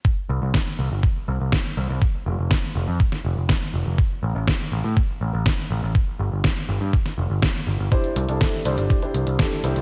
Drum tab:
HH |----------------|----------------|----------------|----------------|
SD |----o-------o---|----o----o--o---|----o-------o---|----o----o--o---|
BD |o---o---o---o---|o---o---o---o---|o---o---o---o---|o---o---o---o---|

HH |xxxxxxxxxxxxxxxx|
SD |----o-------o---|
BD |o---o---o---o---|